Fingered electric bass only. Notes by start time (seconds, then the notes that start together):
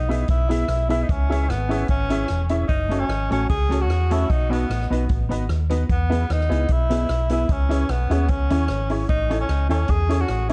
Already playing: B1
0.29 B1
0.68 B1
1.09 C#2
1.48 G#1
1.89 G#1
2.30 E1
2.69 F#1
3.09 G#1
3.31 A1
3.50 C#2
3.89 E2
4.30 B1
4.70 A1
4.91 B1
5.10 A1
5.31 G#1
5.49 D#2
5.89 E2
6.30 D#2
6.50 C#2
6.69 B1
7.09 B1
7.49 C#2
7.89 B1
8.10 D#2
8.29 C#2
8.50 D#2
8.69 G#1
9.09 A1
9.49 C#2
9.70 D#2
9.89 E2
10.29 A1